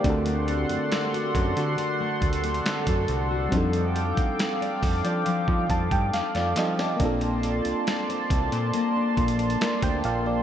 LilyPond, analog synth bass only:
\new Staff \with { instrumentName = "Analog synth bass" } { \clef bass \time 4/4 \key f \mixolydian \tempo 4 = 69 d,8. fis,16 r8 fis,16 d16 r8 d,8 r16 fis,16 c,8 | f,8. f,16 r8 f,16 f16 r16 f16 f,16 g,16 f,16 f,16 f8 | bes,,8. c,16 r8 c,16 bes,16 r8 bes,,8 r16 d,16 bes,,8 | }